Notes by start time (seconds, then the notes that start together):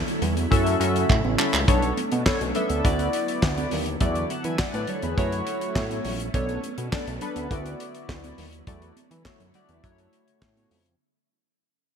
Already playing: D3 F#3 A3 E4
0.08 closed hi-hat, muted conga
0.22 E2, closed hi-hat, low conga
0.36 closed hi-hat, high conga
0.51 F#2 C#3 A3 C#4 E4 F#4 A4 E5, kick, closed hi-hat
0.66 closed hi-hat, muted conga
0.80 F#2 C#4 E4 F#4 A4 E5, closed hi-hat
0.96 closed hi-hat
1.10 A2, kick, clap
1.25 A1, muted conga, high conga
1.38 C#4 E4 F#4 A4 E5, clap, low conga
1.53 C#2, clap
1.67 B1 A3 B3 C#4 D4 A4 C#5, kick, closed hi-hat, muted conga, low conga
1.82 closed hi-hat
1.97 closed hi-hat, high conga
2.12 B2, closed hi-hat, high conga
2.26 B3 D4 A4 C#5, kick, snare, clap, muted conga
2.41 B1, closed hi-hat, muted conga
2.55 B3 D4 A4 E5, closed hi-hat, low conga
2.70 D2, closed hi-hat, high conga
2.84 D2 D3 F#3 B3 E4 F#4 D5, kick, closed hi-hat, muted conga
2.99 closed hi-hat, muted conga
3.13 closed hi-hat
3.28 closed hi-hat
3.43 D2, kick, snare, clap, muted conga
3.58 closed hi-hat, muted conga, high conga
3.71 D#2, open hi-hat, low conga
3.86 closed hi-hat
4.00 E2 D3 A3 E4 F#4 D5, kick, closed hi-hat, muted conga, low conga
4.15 closed hi-hat
4.30 F#5 A5, closed hi-hat, high conga
4.44 E3 E5 G#5, closed hi-hat, high conga
4.59 D5 F#5, kick, snare, clap
4.74 A2 B4 D5, closed hi-hat, muted conga
4.87 A4 C#5, closed hi-hat, low conga
5.03 E2 G#4 B4, closed hi-hat, high conga
5.18 F#2 F#3 A3 C#4 E4 F#4 C#5, kick, closed hi-hat, muted conga
5.32 closed hi-hat
5.47 closed hi-hat
5.61 closed hi-hat
5.76 A2, kick, snare, clap, muted conga
5.91 closed hi-hat, muted conga, high conga
6.05 A#1, open hi-hat, low conga
6.20 closed hi-hat
6.33 B1 B3 D4 A4 C#5, kick, closed hi-hat, muted conga, low conga
6.49 closed hi-hat
6.63 closed hi-hat, high conga
6.78 B2, closed hi-hat, high conga
6.92 B3 D4 A4 D5, kick, snare, clap
7.07 B1, closed hi-hat
7.21 B3 D4 A4 B4, closed hi-hat, low conga
7.36 D2, closed hi-hat, high conga
7.50 D2 D3 F#3 B3 E4 F#4 D5, kick, closed hi-hat
7.66 closed hi-hat, muted conga
7.80 closed hi-hat
7.95 closed hi-hat
8.09 D2, kick, snare, clap, muted conga
8.24 closed hi-hat, muted conga, high conga
8.38 D#2, open hi-hat, low conga
8.53 closed hi-hat
8.67 E2 D3 A3 E4 F#4 D5, kick, closed hi-hat, low conga
8.82 closed hi-hat, muted conga
8.97 closed hi-hat, high conga
9.11 E3, closed hi-hat, high conga
9.25 A3 E4 F#4 C#5, kick, snare, clap
9.40 F#2, closed hi-hat
9.54 A3 E4 F#4 D5, closed hi-hat, low conga
9.68 E2, closed hi-hat, high conga
9.83 F#2 C#3 A3 E4 F#4 C#5, kick, closed hi-hat
9.98 closed hi-hat, muted conga
10.13 closed hi-hat
10.28 closed hi-hat
10.42 A2, kick, snare, clap
10.57 closed hi-hat, muted conga, high conga
10.71 F2, open hi-hat, low conga
10.86 closed hi-hat